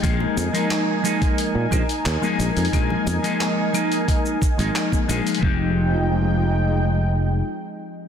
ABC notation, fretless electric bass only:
X:1
M:4/4
L:1/16
Q:1/4=89
K:Fm
V:1 name="Fretless electric bass" clef=bass
B,,, z F,, z6 B,, B,,, z E,, z B,,, F,, | B,,, z F,, z8 A,,, z2 B,,, z | F,,,12 z4 |]